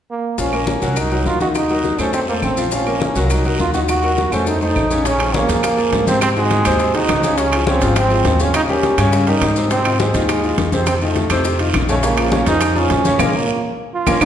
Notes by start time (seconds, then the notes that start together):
0.11 A#3
0.38 A#1 F3 C#4 F4 F5, high bongo, high conga, long guiro, maracas
0.53 A#3 A#4 C#5, high bongo, high conga, claves, maracas
0.67 C#4, high bongo, high conga, short guiro, maracas
0.82 C2 F#3 F#4 A#4, high bongo, short guiro, maracas
0.96 D#4, high bongo, high conga, long guiro, claves, maracas
1.11 F#3 F#4 A#4, high conga, maracas
1.25 D#2 F4, high bongo, low bongo, high conga, short guiro, maracas
1.40 D#3 D#4 F#4 D#5, high bongo, high conga, short guiro, maracas
1.55 D#4, high bongo, high conga, long guiro, claves, maracas
1.69 F#3 F#4 A#4, high bongo, high conga, maracas
1.84 high bongo, high conga, short guiro, maracas
1.98 F2 A3 C#4 A4 C5, high bongo, high conga, short guiro, claves, maracas
2.13 C4, high bongo, high conga, long guiro, maracas
2.28 A3 A#3 A4 C5, high conga, maracas
2.42 A#1 C4, high bongo, low bongo, high conga, short guiro, claves, maracas
2.57 F3 F4 F5, high bongo, short guiro, maracas
2.71 F3 C#4 F4 F5, high bongo, high conga, long guiro, maracas
2.86 A#3 A#4 C#5, high bongo, high conga, claves, maracas
3.01 C#4, high bongo, high conga, short guiro, maracas
3.15 C2 F#3 F#4 A#4, high bongo, short guiro, maracas
3.23 F4
3.30 D#4, high bongo, high conga, long guiro, claves, maracas
3.45 F#3 F#4 A#4, high conga, maracas
3.59 D#2 F4, high bongo, low bongo, high conga, short guiro, maracas
3.74 D#3 D#4 F#4 D#5, high conga, short guiro, maracas
3.88 F#4, high bongo, high conga, long guiro, claves, maracas
4.03 F#3 F#4 A#4, high bongo, high conga, maracas
4.17 high bongo, high conga, short guiro, maracas
4.32 F2 A3 C#4 A4 C5, high conga, short guiro, claves, maracas
4.46 D#4, low bongo, high conga, long guiro, maracas
4.61 A3 D#4 A4 C5, low bongo, high conga, maracas
4.76 A#1, low bongo, high conga, short guiro, claves, maracas
4.91 C#3 C#4 C#5, low bongo, short guiro, maracas
5.05 C#3 C#4 C#5, high bongo, high conga, high timbale, long guiro, maracas
5.20 F3 F4 G#4, high bongo, high conga, high timbale, claves, maracas
5.34 C#3 A#3 C#4 C#5, high bongo, high conga, short guiro, maracas
5.49 F2 F3 F4 G#4, high bongo, high timbale, short guiro, maracas
5.63 A#3, high bongo, high conga, high timbale, long guiro, claves, maracas
5.78 F3 F4 G#4, high conga, maracas
5.92 G#2, high bongo, low bongo, high conga, high timbale, low timbale, short guiro, maracas
6.07 C3 C4 C5, high bongo, high conga, short guiro, maracas
6.21 C4, high bongo, high conga, high timbale, long guiro, claves, maracas
6.36 D#3 G#3 D#4 F#4, high bongo, high conga, maracas
6.51 high bongo, high conga, high timbale, short guiro, maracas
6.65 D#2 C3 C4 C5, high bongo, high conga, high timbale, short guiro, claves, maracas
6.79 high bongo, high conga, long guiro, maracas
6.94 D#3 D#4 F#4, high conga, high timbale, maracas
7.09 C#2, high bongo, low bongo, high conga, high timbale, low timbale, short guiro, claves, maracas
7.23 C#3 C#4 C#5, high bongo, high conga, short guiro, maracas
7.38 C#3 C#4 C#5, high bongo, high conga, high timbale, long guiro, maracas
7.52 F3 F4 G#4, high bongo, high conga, high timbale, claves, maracas
7.67 C#3 C4 C#4 C#5, high bongo, high conga, short guiro, maracas
7.81 G#1 F3 F4 G#4, high bongo, high timbale, short guiro, maracas
7.96 C4, high bongo, high conga, high timbale, long guiro, claves, maracas
8.10 F3 F4 G#4, high conga, maracas
8.25 D#2, high bongo, low bongo, high conga, high timbale, low timbale, short guiro, maracas
8.39 C#3 C#4 C#5, high bongo, high conga, short guiro, maracas
8.54 D#4, high bongo, high conga, high timbale, long guiro, claves, maracas
8.68 G3 C#4 G4 A#4, high bongo, high conga, maracas
8.83 high bongo, high conga, high timbale, short guiro, maracas
8.98 G2 C#3 C#4 C#5, high bongo, high conga, high timbale, short guiro, claves, maracas
9.12 high bongo, high conga, long guiro, maracas
9.27 G3 D#4 G4 A#4, high conga, high timbale, maracas
9.41 G#2, high bongo, low bongo, high conga, high timbale, low timbale, short guiro, claves, maracas
9.56 C3 C4 C5, high bongo, short guiro, maracas
9.71 C3 C4 C5, high bongo, high conga, high timbale, long guiro, maracas
9.85 D#3 D#4 F4, high bongo, high conga, high timbale, claves, maracas
10.00 C3 G#3 C4 C5, high bongo, high conga, short guiro, maracas
10.14 D#2 D#3 D#4 F4, high bongo, high timbale, short guiro, maracas
10.29 G#3, high bongo, high conga, high timbale, long guiro, claves, maracas
10.43 D#3 D#4 F4, high conga, maracas
10.57 F2, high bongo, low bongo, high conga, high timbale, short guiro, maracas
10.72 C3 C4 C5, high bongo, high conga, short guiro, maracas
10.86 C4, high bongo, high conga, high timbale, long guiro, claves, maracas
11.01 D#3 A3 D#4 F4, high bongo, high conga, maracas
11.16 high bongo, high conga, high timbale, short guiro, maracas
11.30 F2 C3 C4 C5, high bongo, high conga, high timbale, short guiro, claves, maracas
11.45 high bongo, high conga, long guiro, maracas
11.59 D#3 D#4 F4, high conga, high timbale, maracas
11.74 A#1, high bongo, low bongo, high conga, high timbale, short guiro, claves, maracas
11.89 C#3 A3 C#4 C#5, high bongo, short guiro, maracas
12.03 C#3 A#3 C#4 C#5, high bongo, high conga, high timbale, long guiro, maracas
12.17 F3 F4 G#4, high bongo, high conga, high timbale, claves, maracas
12.32 C#3 C#4 C#5, high bongo, high conga, short guiro, maracas
12.46 F2 F3 D#4 F4 G#4, high bongo, high timbale, short guiro, maracas
12.61 high bongo, high conga, high timbale, long guiro, claves, maracas
12.76 F3 C#4 F4 G#4, high conga, maracas
12.90 A#1, high bongo, low bongo, high conga, high timbale, low timbale, short guiro, maracas
13.05 C#3 C#4 C#5, high bongo, high conga, short guiro, maracas
13.19 A#1 G#3 A#3 C#4 F4, low bongo, high conga, high timbale, long guiro, claves, maracas
13.36 A#3
13.94 F4
14.06 A#1 A#3 C#4 F4, low bongo, high conga, high timbale, long guiro, claves, maracas
14.21 A#1 A#3 C#4 F4, low bongo, high conga, high timbale, long guiro, claves, maracas